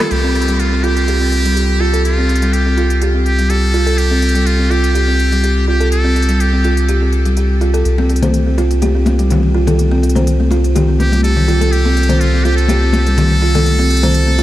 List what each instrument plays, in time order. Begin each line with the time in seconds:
Already playing: muted trumpet A4
0.00 kalimba A4, muted conga, shekere
0.11 analog synth bass C2, muted trumpet G4, closed hi-hat
0.24 kalimba C4
0.35 kalimba C4, closed hi-hat
0.42 closed hi-hat
0.48 kalimba G3, closed hi-hat
0.60 muted trumpet F4, closed hi-hat
0.72 kalimba C4
0.84 kalimba F4, muted trumpet G4, closed hi-hat
0.97 closed hi-hat
1.08 kalimba G4, closed hi-hat
1.21 kalimba C4
1.32 closed hi-hat
1.45 kalimba G3, closed hi-hat
1.56 kalimba G4, closed hi-hat
1.80 kalimba F4, muted trumpet A4
1.94 kalimba A4, closed hi-hat
2.05 muted trumpet F4, closed hi-hat
2.18 kalimba C4
2.29 kalimba C4, closed hi-hat
2.36 closed hi-hat
2.42 kalimba G3, closed hi-hat
2.53 muted trumpet G4, closed hi-hat
2.66 kalimba C4
2.77 kalimba F4, closed hi-hat
2.90 closed hi-hat
3.02 kalimba G4, closed hi-hat
3.15 kalimba C4
3.26 muted trumpet G4, closed hi-hat
3.39 kalimba G3, closed hi-hat
3.50 kalimba G4, muted trumpet A4, closed hi-hat
3.74 kalimba F4, closed hi-hat
3.87 kalimba A4, closed hi-hat
3.98 muted trumpet G4, closed hi-hat
4.11 kalimba C4
4.22 kalimba C4, closed hi-hat
4.29 closed hi-hat
4.35 kalimba G3, closed hi-hat
4.46 muted trumpet F4, closed hi-hat
4.59 kalimba C4
4.70 kalimba F4, muted trumpet G4, closed hi-hat
4.84 closed hi-hat
4.95 kalimba G4, closed hi-hat
5.08 kalimba C4
5.19 closed hi-hat
5.32 kalimba G3, closed hi-hat
5.44 kalimba G4, closed hi-hat
5.68 kalimba F4, muted trumpet G4
5.81 kalimba A4, closed hi-hat
5.92 muted trumpet A4, closed hi-hat
6.05 kalimba C4
6.16 kalimba C4, closed hi-hat
6.22 closed hi-hat
6.29 kalimba G3, closed hi-hat
6.40 muted trumpet G4, closed hi-hat
6.53 kalimba C4
6.64 kalimba F4, closed hi-hat
6.77 closed hi-hat
6.89 kalimba G4, closed hi-hat
7.02 kalimba C4
7.13 closed hi-hat
7.25 kalimba G3, closed hi-hat
7.37 kalimba G4, closed hi-hat
7.61 kalimba F4, closed hi-hat
7.74 kalimba A4, closed hi-hat
7.85 analog synth bass C2, closed hi-hat
7.98 kalimba C4, muted conga
8.09 kalimba C4, closed hi-hat
8.16 closed hi-hat
8.22 kalimba C5, closed hi-hat, muted conga, high conga, low conga
8.34 closed hi-hat
8.46 kalimba C4
8.58 kalimba F4, closed hi-hat, muted conga
8.71 closed hi-hat
8.82 kalimba G4, closed hi-hat, muted conga, high conga
8.95 kalimba C4
9.06 closed hi-hat, muted conga, high conga
9.19 kalimba G3, closed hi-hat
9.30 kalimba G4, closed hi-hat, high conga, low conga
9.43 muted conga
9.55 kalimba F4
9.67 kalimba A4, closed hi-hat, muted conga, low conga
9.79 closed hi-hat, high conga
9.91 kalimba C4, muted conga
10.03 kalimba C4, closed hi-hat
10.09 closed hi-hat
10.15 kalimba C5, closed hi-hat, muted conga, high conga, low conga
10.27 closed hi-hat
10.40 kalimba C4, high conga
10.51 kalimba F4, closed hi-hat, muted conga
10.64 closed hi-hat
10.75 kalimba G4, closed hi-hat, muted conga, high conga, low conga
10.88 kalimba C4
11.00 muted trumpet G4, closed hi-hat, muted conga, high conga
11.12 kalimba G3, closed hi-hat, high conga
11.24 kalimba G4, muted trumpet A4, closed hi-hat
11.36 muted conga, low conga
11.48 kalimba F4, closed hi-hat
11.61 kalimba A4, closed hi-hat, muted conga
11.72 muted trumpet G4, closed hi-hat
11.85 kalimba C4, muted conga
11.96 kalimba C4, closed hi-hat
12.03 closed hi-hat
12.09 kalimba C5, closed hi-hat, muted conga, high conga, low conga
12.20 muted trumpet F4, closed hi-hat
12.34 kalimba C4
12.44 kalimba F4, muted trumpet G4, closed hi-hat, muted conga
12.57 muted trumpet A4, closed hi-hat
12.68 kalimba G4, closed hi-hat, muted conga, high conga
12.82 kalimba C4
12.93 closed hi-hat, muted conga, high conga
13.06 kalimba G3, closed hi-hat
13.17 kalimba G4, closed hi-hat, high conga, low conga
13.30 muted conga
13.42 kalimba F4
13.55 kalimba A4, closed hi-hat, muted conga, low conga
13.65 closed hi-hat, high conga
13.79 kalimba C4, muted conga
13.90 kalimba C4, closed hi-hat
13.97 closed hi-hat
14.03 kalimba C5, closed hi-hat, muted conga, high conga, low conga
14.14 closed hi-hat
14.27 kalimba C4, high conga
14.38 kalimba F4, closed hi-hat, muted conga